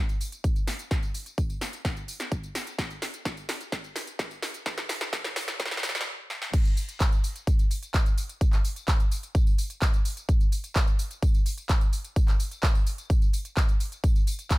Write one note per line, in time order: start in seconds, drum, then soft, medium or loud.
0.09 closed hi-hat soft
0.09 tambourine soft
0.21 open hi-hat loud
0.21 tambourine medium
0.32 closed hi-hat medium
0.32 tambourine soft
0.44 kick loud
0.44 closed hi-hat medium
0.44 tambourine soft
0.56 closed hi-hat soft
0.56 tambourine soft
0.67 snare medium
0.67 open hi-hat loud
0.67 tambourine medium
0.79 closed hi-hat medium
0.79 tambourine soft
0.91 kick loud
0.91 snare medium
0.91 closed hi-hat medium
0.91 tambourine soft
1.03 closed hi-hat soft
1.03 tambourine soft
1.14 open hi-hat loud
1.14 tambourine medium
1.26 closed hi-hat soft
1.26 tambourine soft
1.38 kick loud
1.38 closed hi-hat medium
1.38 tambourine soft
1.50 closed hi-hat soft
1.50 tambourine soft
1.61 snare medium
1.61 open hi-hat loud
1.61 tambourine medium
1.73 closed hi-hat medium
1.73 tambourine soft
1.85 kick loud
1.85 snare medium
1.85 closed hi-hat soft
1.85 tambourine soft
1.96 closed hi-hat soft
1.96 tambourine soft
2.08 open hi-hat loud
2.08 tambourine medium
2.20 snare medium
2.20 closed hi-hat medium
2.20 tambourine soft
2.32 kick loud
2.32 closed hi-hat medium
2.32 tambourine soft
2.43 closed hi-hat soft
2.43 tambourine soft
2.55 snare medium
2.55 open hi-hat loud
2.55 tambourine medium
2.67 closed hi-hat medium
2.67 tambourine soft
2.79 kick loud
2.79 snare medium
2.79 closed hi-hat soft
2.79 tambourine soft
2.90 closed hi-hat soft
2.90 tambourine soft
3.02 snare medium
3.02 open hi-hat loud
3.02 tambourine medium
3.14 closed hi-hat medium
3.14 tambourine soft
3.25 kick loud
3.25 snare medium
3.25 closed hi-hat medium
3.25 tambourine soft
3.37 closed hi-hat soft
3.37 tambourine soft
3.49 snare medium
3.49 open hi-hat loud
3.49 tambourine medium
3.61 closed hi-hat medium
3.61 tambourine soft
3.72 kick loud
3.72 snare medium
3.72 closed hi-hat soft
3.72 tambourine soft
3.84 closed hi-hat soft
3.84 tambourine soft
3.96 snare medium
3.96 open hi-hat loud
3.96 tambourine medium
4.07 closed hi-hat medium
4.07 tambourine soft
4.19 kick loud
4.19 snare medium
4.19 closed hi-hat soft
4.19 tambourine soft
4.31 closed hi-hat soft
4.31 tambourine soft
4.42 snare medium
4.42 open hi-hat loud
4.42 tambourine medium
4.54 closed hi-hat medium
4.54 tambourine soft
4.66 kick loud
4.66 snare medium
4.66 closed hi-hat medium
4.66 tambourine soft
4.78 snare medium
4.78 closed hi-hat soft
4.78 tambourine soft
4.89 snare medium
4.89 open hi-hat loud
4.89 tambourine medium
5.01 snare medium
5.01 closed hi-hat soft
5.01 tambourine soft
5.13 kick loud
5.13 snare loud
5.13 closed hi-hat medium
5.13 tambourine soft
5.24 snare medium
5.24 closed hi-hat soft
5.24 tambourine soft
5.36 snare loud
5.36 open hi-hat loud
5.36 tambourine medium
5.48 snare medium
5.48 closed hi-hat medium
5.48 tambourine soft
5.60 kick loud
5.60 snare loud
5.60 closed hi-hat soft
5.60 tambourine soft
5.66 snare medium
5.71 snare medium
5.71 closed hi-hat soft
5.71 tambourine soft
5.77 snare medium
5.83 snare loud
5.83 open hi-hat loud
5.83 tambourine medium
5.89 snare medium
5.95 snare medium
5.95 closed hi-hat soft
5.95 tambourine soft
6.01 snare loud
6.30 snare medium
6.42 snare medium
6.53 kick loud
6.53 closed hi-hat medium
6.53 crash loud
6.53 tambourine soft
6.65 closed hi-hat soft
6.65 tambourine soft
6.77 open hi-hat loud
6.77 tambourine medium
6.89 closed hi-hat medium
6.89 tambourine soft
7.00 kick loud
7.00 clap loud
7.00 closed hi-hat medium
7.00 tambourine soft
7.12 closed hi-hat soft
7.12 tambourine soft
7.24 open hi-hat loud
7.24 tambourine medium
7.36 closed hi-hat medium
7.36 tambourine soft
7.47 kick loud
7.47 closed hi-hat medium
7.47 tambourine soft
7.59 closed hi-hat soft
7.59 tambourine soft
7.71 open hi-hat loud
7.71 tambourine medium
7.83 closed hi-hat medium
7.83 tambourine soft
7.94 kick loud
7.94 clap loud
7.94 closed hi-hat medium
7.94 tambourine soft
8.06 closed hi-hat soft
8.06 tambourine soft
8.18 open hi-hat loud
8.18 tambourine medium
8.29 closed hi-hat medium
8.29 tambourine soft
8.41 kick loud
8.41 closed hi-hat medium
8.41 tambourine soft
8.53 clap soft
8.53 closed hi-hat soft
8.53 tambourine soft
8.65 open hi-hat loud
8.65 tambourine medium
8.76 closed hi-hat medium
8.76 tambourine soft
8.88 kick loud
8.88 clap loud
8.88 closed hi-hat medium
8.88 tambourine soft
9.00 closed hi-hat soft
9.00 tambourine soft
9.12 open hi-hat loud
9.12 tambourine medium
9.23 closed hi-hat medium
9.23 tambourine soft
9.35 kick loud
9.35 closed hi-hat soft
9.35 tambourine soft
9.47 closed hi-hat soft
9.47 tambourine soft
9.58 open hi-hat loud
9.58 tambourine medium
9.70 closed hi-hat medium
9.70 tambourine soft
9.82 kick loud
9.82 clap loud
9.82 closed hi-hat medium
9.82 tambourine soft
9.94 closed hi-hat soft
9.94 tambourine soft
10.05 open hi-hat loud
10.05 tambourine medium
10.17 closed hi-hat medium
10.17 tambourine soft
10.29 kick loud
10.29 closed hi-hat soft
10.29 tambourine soft
10.41 closed hi-hat soft
10.41 tambourine soft
10.52 open hi-hat loud
10.52 tambourine medium
10.64 closed hi-hat medium
10.64 tambourine soft
10.76 kick loud
10.76 clap loud
10.76 closed hi-hat medium
10.76 tambourine soft
10.87 closed hi-hat soft
10.87 tambourine soft
10.99 open hi-hat loud
10.99 tambourine medium
11.11 closed hi-hat medium
11.11 tambourine soft
11.22 kick loud
11.22 closed hi-hat soft
11.22 tambourine soft
11.34 closed hi-hat soft
11.34 tambourine soft
11.46 open hi-hat loud
11.46 tambourine medium
11.58 closed hi-hat medium
11.58 tambourine soft
11.69 kick loud
11.69 clap loud
11.69 closed hi-hat medium
11.69 tambourine soft
11.81 closed hi-hat soft
11.81 tambourine soft
11.93 open hi-hat loud
11.93 tambourine medium
12.04 closed hi-hat medium
12.04 tambourine soft
12.16 kick loud
12.16 closed hi-hat medium
12.16 tambourine soft
12.28 clap soft
12.28 closed hi-hat soft
12.28 tambourine soft
12.40 open hi-hat loud
12.40 tambourine medium
12.51 closed hi-hat soft
12.51 tambourine soft
12.63 kick loud
12.63 clap loud
12.63 closed hi-hat medium
12.63 tambourine soft
12.75 closed hi-hat soft
12.75 tambourine soft
12.87 open hi-hat loud
12.87 tambourine medium
12.98 closed hi-hat soft
12.98 tambourine soft
13.10 kick loud
13.10 closed hi-hat soft
13.10 tambourine soft
13.22 closed hi-hat soft
13.22 tambourine soft
13.33 open hi-hat loud
13.33 tambourine medium
13.45 closed hi-hat medium
13.45 tambourine soft
13.57 kick loud
13.57 clap loud
13.57 closed hi-hat soft
13.57 tambourine soft
13.69 closed hi-hat soft
13.69 tambourine soft
13.80 open hi-hat loud
13.80 tambourine medium
13.92 closed hi-hat medium
13.92 tambourine soft
14.04 kick loud
14.04 closed hi-hat soft
14.04 tambourine soft
14.15 closed hi-hat soft
14.15 tambourine soft
14.27 open hi-hat loud
14.27 tambourine medium
14.39 closed hi-hat medium
14.39 tambourine soft
14.51 kick loud
14.51 clap loud
14.51 closed hi-hat medium
14.51 tambourine soft